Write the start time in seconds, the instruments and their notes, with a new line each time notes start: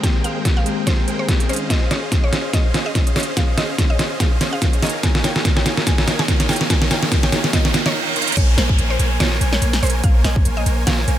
Already playing: tine electric piano D#3 G#3 A#3 C4 G4
0.02 tine electric piano D#3 G#3 A#3 C4 G4, supersaw synth G#3 G#4 G5, synth pluck G5, kick, snare, closed hi-hat
0.24 supersaw synth G#3 G#4 A#4 C5 G5, synth pluck F5, closed hi-hat
0.45 supersaw synth G#3 G#4, kick, snare, closed hi-hat
0.57 synth pluck F5
0.64 tine electric piano D#3 G#3 A#3 C4, supersaw synth G#3 G#4 A#4 C5 G5, closed hi-hat
0.68 tine electric piano G4
0.87 supersaw synth G#3 G#4, synth pluck C5, kick, snare, closed hi-hat
1.08 supersaw synth G#3 G#4 A#4 C5 G5, closed hi-hat
1.18 tine electric piano D#3 G#3 A#3 C4 G#4, synth pluck C5
1.27 tine electric piano D#3 G#3 C4 C#4 D#4, kick, snare, closed hi-hat
1.40 closed hi-hat
1.49 supersaw synth C#4 G#4 C5 D#5 F5, synth pluck C5, closed hi-hat
1.53 closed hi-hat
1.56 closed hi-hat
1.70 synth arpeggio sound G#4, synth pluck D#5, kick, snare, closed hi-hat, riser
1.82 synth arpeggio sound C5
1.91 supersaw synth C#4 G#4 C5 D#5 F5, synth arpeggio sound C#5, synth pluck C#5, snare, closed hi-hat
2.03 synth arpeggio sound G#4
2.12 synth arpeggio sound C5, kick, snare, closed hi-hat
2.23 synth arpeggio sound C#5, synth pluck C#5
2.33 supersaw synth C#4 G#4 C5 D#5 F5, synth arpeggio sound G#4, snare, closed hi-hat
2.44 synth arpeggio sound C5
2.53 supersaw synth C#4 C5 D#5, synth pluck D#5, kick, snare, closed hi-hat
2.65 synth arpeggio sound C5
2.74 supersaw synth C#4 G#4 C5 D#5 F5, synth arpeggio sound C#5, snare, closed hi-hat
2.86 synth arpeggio sound G#4, synth pluck D#5
2.95 synth arpeggio sound C5, kick, snare, closed hi-hat
3.07 synth arpeggio sound C#5, closed hi-hat
3.16 supersaw synth C#4 G#4 C5 D#5 F5, synth arpeggio sound G#4, synth pluck C#5, snare, closed hi-hat, open hi-hat
3.23 closed hi-hat
3.28 synth arpeggio sound C5
3.37 supersaw synth C#4 G#4 C5 D#5 F5, synth arpeggio sound G#4, synth pluck F5, kick, snare, closed hi-hat
3.49 synth arpeggio sound C5
3.58 supersaw synth C#4 G#4 C5 D#5 F5, synth arpeggio sound C#5, synth pluck D#5, snare, closed hi-hat
3.69 synth arpeggio sound G#4
3.78 supersaw synth C#4 C5, synth arpeggio sound C5, kick, snare, closed hi-hat
3.90 synth arpeggio sound C#5, synth pluck D#5
3.99 supersaw synth C#4 G#4 C5 D#5 F5, synth arpeggio sound G#4, snare, closed hi-hat
4.11 synth arpeggio sound C5
4.20 supersaw synth C#4 G#4 C5 D#5 F5, synth arpeggio sound G#4, synth pluck F5, kick, snare, closed hi-hat
4.32 synth arpeggio sound C5
4.41 supersaw synth C#4 G#4 C5 D#5 F5, synth arpeggio sound C#5, snare, closed hi-hat
4.53 synth arpeggio sound G#4, synth pluck F5
4.62 supersaw synth C#4 G#4 C5 F5, synth arpeggio sound C5, kick, snare, closed hi-hat
4.73 synth arpeggio sound C#5, closed hi-hat
4.83 supersaw synth D#4 A#4 C#5 F5 G#5, synth arpeggio sound G#4, synth pluck D#5, snare, closed hi-hat, open hi-hat
4.89 closed hi-hat
4.94 synth arpeggio sound A#4
5.03 supersaw synth D#4 A#4 C#5 F5 G#5, synth arpeggio sound G#4, synth pluck G#5, kick, snare, closed hi-hat
5.15 synth arpeggio sound A#4, snare
5.24 supersaw synth D#4 A#4 C#5 F5 G#5, synth arpeggio sound C#5, synth pluck G5, snare, closed hi-hat
5.36 synth arpeggio sound G#4, snare
5.45 supersaw synth D#4 A#4 C#5 F5 G#5, synth arpeggio sound A#4, kick, snare, closed hi-hat
5.57 synth arpeggio sound C#5, synth pluck G5, snare
5.66 supersaw synth D#4 A#4 C#5 F5 G#5, synth arpeggio sound G#4, snare, closed hi-hat
5.77 synth arpeggio sound A#4, snare
5.87 supersaw synth D#4 C#5 G#5, synth pluck G#5, kick, snare, closed hi-hat
5.98 synth arpeggio sound A#4, snare
6.08 supersaw synth D#4 A#4 C#5 F5 G#5, synth arpeggio sound C#5, snare, closed hi-hat
6.19 synth arpeggio sound G#4, synth pluck G#5, snare
6.28 supersaw synth D#4 A#4 C#5 G#5, synth arpeggio sound A#4, kick, snare, closed hi-hat
6.40 synth arpeggio sound C#5, snare, closed hi-hat
6.49 supersaw synth D#4 A#4 C#5 F5 G#5, synth arpeggio sound G#4, synth pluck G5, snare, closed hi-hat, open hi-hat
6.56 closed hi-hat
6.61 synth arpeggio sound A#4, snare
6.70 supersaw synth D#4 A#4 C#5 G#5, synth pluck G#5, kick, snare, closed hi-hat
6.82 synth arpeggio sound A#4, snare
6.91 supersaw synth D#4 A#4 C#5 F5 G#5, synth arpeggio sound C#5, synth pluck G5, snare, closed hi-hat
7.03 synth arpeggio sound G#4, snare
7.12 supersaw synth D#4 C#5, synth arpeggio sound A#4, kick, snare, closed hi-hat
7.23 synth arpeggio sound C#5, synth pluck G5, snare
7.32 supersaw synth D#4 A#4 C#5 F5 G#5, synth arpeggio sound G#4, snare, closed hi-hat
7.44 synth arpeggio sound A#4, snare
7.53 supersaw synth A#4, synth pluck D#5, kick, snare, closed hi-hat, reverse cymbal
7.65 synth arpeggio sound A#4, snare
7.74 synth arpeggio sound A#4, snare, closed hi-hat
7.86 supersaw synth D#4 A#4 C#5 F5 A#5, synth pluck C#5, synth arpeggio sound D#5, snare
7.95 supersaw synth D#4 A#4 C#5 F5 G5
8.16 supersaw synth D#4 A#4 C#5 F5 C6, closed hi-hat
8.22 closed hi-hat
8.27 closed hi-hat
8.32 closed hi-hat
8.37 808-style bass A#1, supersaw synth A#3 A#4 C5, synth pluck C#5, digital synth lead G#5, kick, closed hi-hat, crash, downlifter
8.58 808-style bass A#1, supersaw synth A#3 A#4 C5 C#5 G#5, synth pluck C5, digital synth lead G#5, snare, closed hi-hat
8.69 kick
8.79 808-style bass A#1, supersaw synth A#3 A#4 C5 C#5 G#5, digital synth lead G#5, closed hi-hat
8.90 synth pluck C5
8.99 808-style bass A#1, supersaw synth A#3 A#4 C5 C#5 G#5, digital synth lead G#5, closed hi-hat
9.20 808-style bass A#1, supersaw synth A#3 A#4 C5 C#5 G#5, synth pluck C#5, snare, closed hi-hat
9.41 808-style bass A#1, supersaw synth A#3 A#4 C5 C#5 G#5, digital synth lead G#5, closed hi-hat
9.53 synth pluck C#5, snare
9.62 808-style bass A#1, supersaw synth A#3 A#4 C5 C#5 G#5, digital synth lead G#5, closed hi-hat
9.73 snare, closed hi-hat
9.83 808-style bass A#1, supersaw synth A#3 A#4 C5 C#5 G#5, synth pluck C5, digital synth lead G#5, closed hi-hat, open hi-hat
9.90 closed hi-hat
10.04 808-style bass A#1, synth pluck F5, digital synth lead G#5, kick, closed hi-hat
10.24 808-style bass A#1, supersaw synth A#3 A#4 C5 C#5 G#5, synth pluck D#5, digital synth lead G#5, snare, closed hi-hat
10.36 kick
10.45 808-style bass A#1, supersaw synth A#3 A#4 C5 C#5 G#5, digital synth lead G#5, closed hi-hat
10.57 synth pluck D#5
10.66 808-style bass A#1, supersaw synth A#3 A#4 C5 C#5 G#5, digital synth lead G#5, closed hi-hat
10.87 808-style bass A#1, supersaw synth A#3 A#4 C5 C#5 G#5, synth pluck F5, digital synth lead G#5, snare, closed hi-hat
11.08 808-style bass A#1, supersaw synth A#3 A#4 C5 C#5 G#5, digital synth lead G#5, closed hi-hat